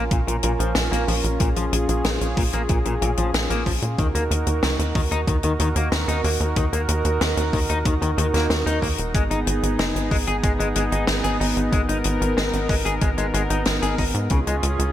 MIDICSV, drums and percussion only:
0, 0, Header, 1, 2, 480
1, 0, Start_track
1, 0, Key_signature, -6, "minor"
1, 0, Tempo, 645161
1, 1045, Time_signature, 4, 2, 24, 8
1, 11103, End_track
2, 0, Start_track
2, 0, Title_t, "Drums"
2, 81, Note_on_c, 9, 42, 76
2, 83, Note_on_c, 9, 36, 117
2, 155, Note_off_c, 9, 42, 0
2, 158, Note_off_c, 9, 36, 0
2, 209, Note_on_c, 9, 42, 59
2, 283, Note_off_c, 9, 42, 0
2, 318, Note_on_c, 9, 42, 104
2, 392, Note_off_c, 9, 42, 0
2, 446, Note_on_c, 9, 42, 58
2, 520, Note_off_c, 9, 42, 0
2, 558, Note_on_c, 9, 38, 122
2, 559, Note_on_c, 9, 42, 74
2, 632, Note_off_c, 9, 38, 0
2, 633, Note_off_c, 9, 42, 0
2, 690, Note_on_c, 9, 42, 57
2, 764, Note_off_c, 9, 42, 0
2, 804, Note_on_c, 9, 46, 85
2, 879, Note_off_c, 9, 46, 0
2, 924, Note_on_c, 9, 42, 56
2, 998, Note_off_c, 9, 42, 0
2, 1040, Note_on_c, 9, 42, 82
2, 1044, Note_on_c, 9, 36, 123
2, 1114, Note_off_c, 9, 42, 0
2, 1119, Note_off_c, 9, 36, 0
2, 1162, Note_on_c, 9, 42, 54
2, 1237, Note_off_c, 9, 42, 0
2, 1285, Note_on_c, 9, 42, 104
2, 1360, Note_off_c, 9, 42, 0
2, 1404, Note_on_c, 9, 42, 57
2, 1478, Note_off_c, 9, 42, 0
2, 1521, Note_on_c, 9, 42, 80
2, 1524, Note_on_c, 9, 38, 110
2, 1595, Note_off_c, 9, 42, 0
2, 1599, Note_off_c, 9, 38, 0
2, 1645, Note_on_c, 9, 42, 58
2, 1719, Note_off_c, 9, 42, 0
2, 1764, Note_on_c, 9, 36, 112
2, 1764, Note_on_c, 9, 46, 90
2, 1838, Note_off_c, 9, 46, 0
2, 1839, Note_off_c, 9, 36, 0
2, 1882, Note_on_c, 9, 42, 54
2, 1956, Note_off_c, 9, 42, 0
2, 2000, Note_on_c, 9, 42, 78
2, 2005, Note_on_c, 9, 36, 120
2, 2074, Note_off_c, 9, 42, 0
2, 2079, Note_off_c, 9, 36, 0
2, 2123, Note_on_c, 9, 42, 53
2, 2197, Note_off_c, 9, 42, 0
2, 2246, Note_on_c, 9, 42, 91
2, 2320, Note_off_c, 9, 42, 0
2, 2361, Note_on_c, 9, 42, 59
2, 2436, Note_off_c, 9, 42, 0
2, 2485, Note_on_c, 9, 42, 88
2, 2489, Note_on_c, 9, 38, 127
2, 2560, Note_off_c, 9, 42, 0
2, 2563, Note_off_c, 9, 38, 0
2, 2606, Note_on_c, 9, 42, 60
2, 2680, Note_off_c, 9, 42, 0
2, 2725, Note_on_c, 9, 36, 64
2, 2728, Note_on_c, 9, 46, 81
2, 2799, Note_off_c, 9, 36, 0
2, 2802, Note_off_c, 9, 46, 0
2, 2844, Note_on_c, 9, 42, 54
2, 2918, Note_off_c, 9, 42, 0
2, 2965, Note_on_c, 9, 36, 123
2, 2965, Note_on_c, 9, 42, 71
2, 3039, Note_off_c, 9, 36, 0
2, 3040, Note_off_c, 9, 42, 0
2, 3088, Note_on_c, 9, 42, 58
2, 3163, Note_off_c, 9, 42, 0
2, 3208, Note_on_c, 9, 42, 104
2, 3282, Note_off_c, 9, 42, 0
2, 3323, Note_on_c, 9, 42, 59
2, 3397, Note_off_c, 9, 42, 0
2, 3443, Note_on_c, 9, 38, 120
2, 3446, Note_on_c, 9, 42, 82
2, 3518, Note_off_c, 9, 38, 0
2, 3520, Note_off_c, 9, 42, 0
2, 3566, Note_on_c, 9, 42, 55
2, 3640, Note_off_c, 9, 42, 0
2, 3685, Note_on_c, 9, 36, 117
2, 3687, Note_on_c, 9, 46, 77
2, 3759, Note_off_c, 9, 36, 0
2, 3761, Note_off_c, 9, 46, 0
2, 3807, Note_on_c, 9, 42, 60
2, 3881, Note_off_c, 9, 42, 0
2, 3925, Note_on_c, 9, 36, 126
2, 3925, Note_on_c, 9, 42, 78
2, 3999, Note_off_c, 9, 36, 0
2, 3999, Note_off_c, 9, 42, 0
2, 4040, Note_on_c, 9, 42, 58
2, 4114, Note_off_c, 9, 42, 0
2, 4163, Note_on_c, 9, 42, 94
2, 4237, Note_off_c, 9, 42, 0
2, 4283, Note_on_c, 9, 42, 55
2, 4357, Note_off_c, 9, 42, 0
2, 4404, Note_on_c, 9, 38, 127
2, 4405, Note_on_c, 9, 42, 89
2, 4479, Note_off_c, 9, 38, 0
2, 4479, Note_off_c, 9, 42, 0
2, 4527, Note_on_c, 9, 42, 57
2, 4601, Note_off_c, 9, 42, 0
2, 4644, Note_on_c, 9, 46, 91
2, 4718, Note_off_c, 9, 46, 0
2, 4768, Note_on_c, 9, 42, 50
2, 4842, Note_off_c, 9, 42, 0
2, 4881, Note_on_c, 9, 42, 77
2, 4884, Note_on_c, 9, 36, 125
2, 4956, Note_off_c, 9, 42, 0
2, 4959, Note_off_c, 9, 36, 0
2, 5007, Note_on_c, 9, 42, 61
2, 5082, Note_off_c, 9, 42, 0
2, 5123, Note_on_c, 9, 42, 105
2, 5197, Note_off_c, 9, 42, 0
2, 5243, Note_on_c, 9, 42, 57
2, 5317, Note_off_c, 9, 42, 0
2, 5363, Note_on_c, 9, 42, 70
2, 5366, Note_on_c, 9, 38, 113
2, 5438, Note_off_c, 9, 42, 0
2, 5440, Note_off_c, 9, 38, 0
2, 5484, Note_on_c, 9, 42, 54
2, 5559, Note_off_c, 9, 42, 0
2, 5604, Note_on_c, 9, 36, 111
2, 5607, Note_on_c, 9, 46, 82
2, 5679, Note_off_c, 9, 36, 0
2, 5681, Note_off_c, 9, 46, 0
2, 5724, Note_on_c, 9, 42, 55
2, 5799, Note_off_c, 9, 42, 0
2, 5844, Note_on_c, 9, 36, 122
2, 5844, Note_on_c, 9, 42, 83
2, 5918, Note_off_c, 9, 36, 0
2, 5918, Note_off_c, 9, 42, 0
2, 5967, Note_on_c, 9, 42, 53
2, 6042, Note_off_c, 9, 42, 0
2, 6086, Note_on_c, 9, 42, 96
2, 6161, Note_off_c, 9, 42, 0
2, 6206, Note_on_c, 9, 42, 57
2, 6212, Note_on_c, 9, 38, 39
2, 6280, Note_off_c, 9, 42, 0
2, 6286, Note_off_c, 9, 38, 0
2, 6325, Note_on_c, 9, 38, 118
2, 6327, Note_on_c, 9, 42, 85
2, 6400, Note_off_c, 9, 38, 0
2, 6401, Note_off_c, 9, 42, 0
2, 6449, Note_on_c, 9, 42, 57
2, 6524, Note_off_c, 9, 42, 0
2, 6564, Note_on_c, 9, 36, 63
2, 6570, Note_on_c, 9, 46, 89
2, 6639, Note_off_c, 9, 36, 0
2, 6644, Note_off_c, 9, 46, 0
2, 6682, Note_on_c, 9, 42, 54
2, 6756, Note_off_c, 9, 42, 0
2, 6804, Note_on_c, 9, 36, 118
2, 6806, Note_on_c, 9, 42, 82
2, 6879, Note_off_c, 9, 36, 0
2, 6880, Note_off_c, 9, 42, 0
2, 6925, Note_on_c, 9, 42, 53
2, 7000, Note_off_c, 9, 42, 0
2, 7045, Note_on_c, 9, 42, 101
2, 7120, Note_off_c, 9, 42, 0
2, 7167, Note_on_c, 9, 42, 57
2, 7242, Note_off_c, 9, 42, 0
2, 7283, Note_on_c, 9, 42, 82
2, 7287, Note_on_c, 9, 38, 110
2, 7358, Note_off_c, 9, 42, 0
2, 7362, Note_off_c, 9, 38, 0
2, 7410, Note_on_c, 9, 42, 55
2, 7484, Note_off_c, 9, 42, 0
2, 7524, Note_on_c, 9, 36, 108
2, 7524, Note_on_c, 9, 46, 93
2, 7598, Note_off_c, 9, 36, 0
2, 7598, Note_off_c, 9, 46, 0
2, 7643, Note_on_c, 9, 42, 58
2, 7717, Note_off_c, 9, 42, 0
2, 7762, Note_on_c, 9, 42, 82
2, 7764, Note_on_c, 9, 36, 118
2, 7837, Note_off_c, 9, 42, 0
2, 7839, Note_off_c, 9, 36, 0
2, 7887, Note_on_c, 9, 42, 54
2, 7961, Note_off_c, 9, 42, 0
2, 8002, Note_on_c, 9, 42, 102
2, 8076, Note_off_c, 9, 42, 0
2, 8125, Note_on_c, 9, 42, 55
2, 8199, Note_off_c, 9, 42, 0
2, 8239, Note_on_c, 9, 38, 127
2, 8241, Note_on_c, 9, 42, 83
2, 8314, Note_off_c, 9, 38, 0
2, 8315, Note_off_c, 9, 42, 0
2, 8363, Note_on_c, 9, 42, 56
2, 8437, Note_off_c, 9, 42, 0
2, 8488, Note_on_c, 9, 46, 89
2, 8562, Note_off_c, 9, 46, 0
2, 8606, Note_on_c, 9, 42, 51
2, 8681, Note_off_c, 9, 42, 0
2, 8723, Note_on_c, 9, 42, 74
2, 8724, Note_on_c, 9, 36, 113
2, 8797, Note_off_c, 9, 42, 0
2, 8798, Note_off_c, 9, 36, 0
2, 8846, Note_on_c, 9, 42, 51
2, 8920, Note_off_c, 9, 42, 0
2, 8958, Note_on_c, 9, 42, 100
2, 9032, Note_off_c, 9, 42, 0
2, 9090, Note_on_c, 9, 42, 50
2, 9164, Note_off_c, 9, 42, 0
2, 9208, Note_on_c, 9, 42, 79
2, 9209, Note_on_c, 9, 38, 117
2, 9282, Note_off_c, 9, 42, 0
2, 9283, Note_off_c, 9, 38, 0
2, 9324, Note_on_c, 9, 42, 55
2, 9399, Note_off_c, 9, 42, 0
2, 9444, Note_on_c, 9, 36, 103
2, 9448, Note_on_c, 9, 46, 96
2, 9518, Note_off_c, 9, 36, 0
2, 9523, Note_off_c, 9, 46, 0
2, 9569, Note_on_c, 9, 42, 61
2, 9644, Note_off_c, 9, 42, 0
2, 9681, Note_on_c, 9, 42, 79
2, 9684, Note_on_c, 9, 36, 115
2, 9755, Note_off_c, 9, 42, 0
2, 9759, Note_off_c, 9, 36, 0
2, 9804, Note_on_c, 9, 42, 58
2, 9878, Note_off_c, 9, 42, 0
2, 9927, Note_on_c, 9, 42, 91
2, 10001, Note_off_c, 9, 42, 0
2, 10045, Note_on_c, 9, 42, 63
2, 10119, Note_off_c, 9, 42, 0
2, 10158, Note_on_c, 9, 42, 80
2, 10163, Note_on_c, 9, 38, 114
2, 10233, Note_off_c, 9, 42, 0
2, 10238, Note_off_c, 9, 38, 0
2, 10286, Note_on_c, 9, 42, 60
2, 10360, Note_off_c, 9, 42, 0
2, 10404, Note_on_c, 9, 36, 59
2, 10405, Note_on_c, 9, 46, 94
2, 10479, Note_off_c, 9, 36, 0
2, 10480, Note_off_c, 9, 46, 0
2, 10524, Note_on_c, 9, 42, 49
2, 10598, Note_off_c, 9, 42, 0
2, 10637, Note_on_c, 9, 42, 74
2, 10644, Note_on_c, 9, 36, 115
2, 10711, Note_off_c, 9, 42, 0
2, 10719, Note_off_c, 9, 36, 0
2, 10766, Note_on_c, 9, 42, 56
2, 10840, Note_off_c, 9, 42, 0
2, 10884, Note_on_c, 9, 42, 97
2, 10958, Note_off_c, 9, 42, 0
2, 11007, Note_on_c, 9, 42, 54
2, 11081, Note_off_c, 9, 42, 0
2, 11103, End_track
0, 0, End_of_file